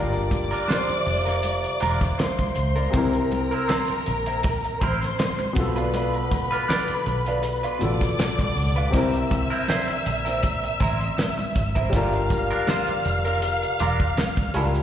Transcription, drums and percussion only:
0.13 closed hi-hat soft
0.31 kick medium
0.31 closed hi-hat medium
0.31 muted conga soft
0.53 closed hi-hat medium
0.68 snare loud
0.68 closed hi-hat medium
0.68 high conga medium
0.89 closed hi-hat medium
1.06 open hi-hat medium
1.06 low conga medium
1.26 snare soft
1.26 closed hi-hat medium
1.43 closed hi-hat medium
1.43 muted conga soft
1.64 closed hi-hat soft
1.80 closed hi-hat medium
1.80 muted conga soft
1.80 low conga medium
2.01 kick medium
2.01 snare soft
2.01 closed hi-hat soft
2.19 snare loud
2.19 closed hi-hat medium
2.19 high conga medium
2.39 kick medium
2.39 closed hi-hat soft
2.39 high conga medium
2.55 closed hi-hat medium
2.76 closed hi-hat medium
2.93 kick loud
2.93 closed hi-hat medium
2.93 muted conga soft
3.13 closed hi-hat soft
3.32 closed hi-hat medium
3.32 muted conga soft
3.52 closed hi-hat medium
3.69 snare loud
3.69 closed hi-hat medium
3.69 high conga medium
3.88 closed hi-hat medium
4.06 closed hi-hat medium
4.06 low conga medium
4.26 closed hi-hat medium
4.43 kick loud
4.43 closed hi-hat medium
4.43 muted conga soft
4.64 closed hi-hat medium
4.81 kick medium
4.81 closed hi-hat medium
4.81 muted conga soft
4.81 low conga medium
5.02 snare soft
5.02 closed hi-hat soft
5.19 snare loud
5.19 closed hi-hat medium
5.19 high conga medium
5.39 closed hi-hat soft
5.39 high conga medium
5.55 kick loud
5.55 closed hi-hat medium
5.76 closed hi-hat soft
5.94 closed hi-hat medium
5.94 muted conga soft
6.13 closed hi-hat soft
6.31 kick medium
6.31 closed hi-hat medium
6.31 muted conga soft
6.52 closed hi-hat medium
6.69 snare loud
6.69 closed hi-hat medium
6.69 high conga medium
6.88 closed hi-hat medium
7.06 closed hi-hat medium
7.06 low conga medium
7.26 closed hi-hat medium
7.43 closed hi-hat medium
7.64 closed hi-hat medium
7.81 closed hi-hat medium
7.81 muted conga soft
7.81 low conga medium
8.01 kick medium
8.01 snare soft
8.01 closed hi-hat soft
8.19 snare loud
8.19 closed hi-hat medium
8.19 high conga medium
8.39 kick medium
8.39 closed hi-hat soft
8.39 high conga medium
8.56 open hi-hat medium
8.76 closed hi-hat medium
8.93 kick loud
8.93 closed hi-hat medium
8.93 muted conga soft
9.14 closed hi-hat soft
9.31 kick medium
9.31 closed hi-hat medium
9.31 muted conga soft
9.52 closed hi-hat soft
9.68 snare loud
9.68 closed hi-hat medium
9.68 high conga medium
9.88 closed hi-hat medium
10.06 closed hi-hat medium
10.06 low conga medium
10.26 snare soft
10.26 closed hi-hat medium
10.43 kick medium
10.43 closed hi-hat medium
10.43 muted conga soft
10.64 closed hi-hat soft
10.80 kick medium
10.80 closed hi-hat medium
10.80 muted conga soft
10.80 low conga medium
11.01 closed hi-hat soft
11.18 snare loud
11.18 closed hi-hat medium
11.18 high conga medium
11.39 closed hi-hat soft
11.39 high conga medium
11.55 kick medium
11.55 closed hi-hat medium
11.76 kick medium
11.76 closed hi-hat medium
11.93 kick loud
11.93 closed hi-hat medium
11.93 tambourine soft
11.93 muted conga medium
12.13 closed hi-hat soft
12.30 kick medium
12.30 closed hi-hat medium
12.30 tambourine soft
12.30 muted conga soft
12.51 closed hi-hat soft
12.51 tambourine soft
12.67 snare loud
12.67 closed hi-hat medium
12.67 tambourine medium
12.67 high conga medium
12.87 closed hi-hat medium
13.05 closed hi-hat medium
13.05 tambourine soft
13.05 low conga medium
13.25 closed hi-hat medium
13.42 closed hi-hat medium
13.42 tambourine soft
13.63 closed hi-hat medium
13.80 closed hi-hat medium
13.80 tambourine soft
13.80 muted conga soft
13.80 low conga medium
14.00 kick medium
14.00 closed hi-hat soft
14.17 snare loud
14.17 closed hi-hat medium
14.17 tambourine medium
14.17 high conga medium
14.37 kick medium
14.37 closed hi-hat soft
14.37 high conga medium
14.54 closed hi-hat medium
14.54 tambourine soft
14.75 closed hi-hat soft

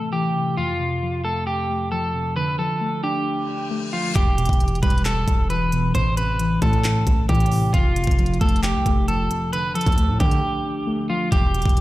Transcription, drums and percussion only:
4.16 kick loud
4.16 closed hi-hat medium
4.38 closed hi-hat medium
4.45 kick loud
4.45 closed hi-hat medium
4.53 closed hi-hat medium
4.60 closed hi-hat medium
4.68 closed hi-hat soft
4.75 closed hi-hat soft
4.83 kick medium
4.83 closed hi-hat medium
4.90 closed hi-hat medium
4.98 closed hi-hat medium
5.05 clap loud
5.05 closed hi-hat medium
5.28 kick medium
5.28 closed hi-hat medium
5.50 closed hi-hat medium
5.72 closed hi-hat medium
5.95 closed hi-hat medium
6.17 closed hi-hat medium
6.39 closed hi-hat medium
6.62 kick medium
6.62 closed hi-hat medium
6.73 closed hi-hat soft
6.84 clap loud
6.84 closed hi-hat medium
7.07 kick loud
7.07 closed hi-hat medium
7.29 kick medium
7.29 closed hi-hat medium
7.35 closed hi-hat medium
7.40 closed hi-hat medium
7.46 closed hi-hat medium
7.51 open hi-hat medium
7.74 kick loud
7.74 closed hi-hat medium
7.96 closed hi-hat medium
8.04 kick loud
8.04 closed hi-hat medium
8.11 closed hi-hat medium
8.19 closed hi-hat medium
8.26 closed hi-hat medium
8.34 closed hi-hat soft
8.41 kick medium
8.41 closed hi-hat medium
8.48 closed hi-hat medium
8.56 closed hi-hat medium
8.63 clap loud
8.63 closed hi-hat medium
8.86 kick loud
8.86 closed hi-hat medium
9.08 closed hi-hat medium
9.31 closed hi-hat medium
9.53 closed hi-hat medium
9.75 closed hi-hat medium
9.81 closed hi-hat medium
9.86 kick medium
9.86 closed hi-hat medium
9.92 closed hi-hat soft
9.98 closed hi-hat medium
10.20 kick medium
10.20 closed hi-hat medium
10.31 closed hi-hat medium
11.32 kick loud
11.32 closed hi-hat medium
11.54 closed hi-hat medium
11.62 kick loud
11.62 closed hi-hat medium
11.69 closed hi-hat medium
11.77 closed hi-hat medium

